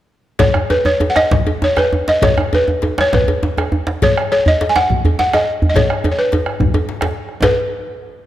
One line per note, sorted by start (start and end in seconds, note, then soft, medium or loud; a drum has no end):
0.39 0.68 C#5 medium
0.39 bombo low medium
0.39 cowbell medium
0.39 djembe slap medium
0.39 djembe bass medium
0.54 bombo rim medium
0.54 djembe tone medium
0.70 0.86 B4 medium
0.70 cowbell soft
0.70 djembe slap soft
0.70 djembe tone medium
0.85 1.08 C#5 medium
0.85 djembe tone medium
1.00 cowbell soft
1.00 djembe slap medium
1.00 djembe tone medium
1.10 1.16 F#5 medium
1.16 1.59 D#5 medium
1.16 bombo rim medium
1.16 djembe slap medium
1.16 djembe slap soft
1.16 djembe tone medium
1.31 bombo low medium
1.31 djembe slap medium
1.31 djembe bass medium
1.47 cowbell soft
1.47 djembe slap soft
1.47 djembe tone medium
1.62 1.79 C#5 medium
1.62 djembe slap medium
1.62 djembe tone medium
1.77 2.06 B4 medium
1.77 bombo rim medium
1.77 cowbell soft
1.77 djembe tone medium
1.77 djembe tone soft
1.93 djembe tone medium
2.08 2.24 D#5 medium
2.08 djembe slap medium
2.22 2.54 C#5 medium
2.22 bombo low medium
2.22 cowbell medium
2.22 djembe slap medium
2.22 djembe bass medium
2.37 bombo rim medium
2.37 djembe tone medium
2.53 2.96 B4 medium
2.53 cowbell soft
2.53 djembe tone medium
2.68 djembe tone medium
2.82 cowbell soft
2.82 djembe slap medium
2.82 djembe tone medium
2.98 3.13 C#5 medium
2.98 bombo rim medium
2.98 djembe slap soft
2.98 djembe slap medium
2.98 djembe tone soft
3.13 3.55 B4 medium
3.13 bombo low medium
3.13 djembe slap medium
3.13 djembe bass medium
3.28 cowbell soft
3.28 djembe slap soft
3.28 djembe tone medium
3.43 djembe slap medium
3.43 djembe tone medium
3.57 bombo rim medium
3.57 cowbell soft
3.57 djembe tone medium
3.72 djembe tone medium
3.87 djembe slap medium
4.02 4.31 C#5 medium
4.02 bombo low medium
4.02 cowbell medium
4.02 djembe slap medium
4.02 djembe bass medium
4.16 bombo rim medium
4.16 djembe tone medium
4.31 4.47 C#5 medium
4.31 cowbell soft
4.31 djembe slap soft
4.46 4.70 D#5 medium
4.46 djembe bass medium
4.61 cowbell soft
4.61 djembe slap medium
4.69 4.76 G#5 medium
4.75 5.18 F#5 loud
4.75 bombo rim medium
4.75 djembe slap soft
4.75 djembe slap medium
4.75 djembe tone soft
4.90 bombo low medium
4.90 djembe bass medium
5.04 cowbell soft
5.04 djembe slap soft
5.04 djembe bass medium
5.19 5.34 F#5 medium
5.19 djembe slap medium
5.33 5.68 D#5 medium
5.33 bombo rim medium
5.33 cowbell soft
5.33 djembe slap medium
5.33 djembe tone soft
5.62 djembe bass medium
5.70 5.76 D#5 medium
5.76 6.10 C#5 medium
5.76 bombo low medium
5.76 cowbell medium
5.76 djembe slap medium
5.76 djembe tone medium
5.76 djembe bass medium
5.90 bombo rim medium
5.90 djembe tone medium
6.04 bombo rim soft
6.04 cowbell soft
6.04 djembe tone medium
6.12 6.18 C#5 soft
6.18 7.25 B4 medium
6.18 bombo rim soft
6.18 djembe slap soft
6.32 cowbell soft
6.32 djembe slap medium
6.32 djembe tone medium
6.46 bombo rim medium
6.46 djembe slap soft
6.46 djembe tone medium
6.60 bombo low medium
6.60 djembe tone medium
6.60 djembe bass medium
6.74 cowbell soft
6.74 djembe slap soft
6.74 djembe tone medium
6.89 djembe slap medium
7.01 bombo rim medium
7.01 cowbell soft
7.01 djembe slap medium
7.01 djembe tone medium
7.29 bombo rim soft
7.42 7.56 B4 medium
7.42 bombo low medium
7.42 cowbell medium
7.42 djembe slap loud
7.42 djembe bass medium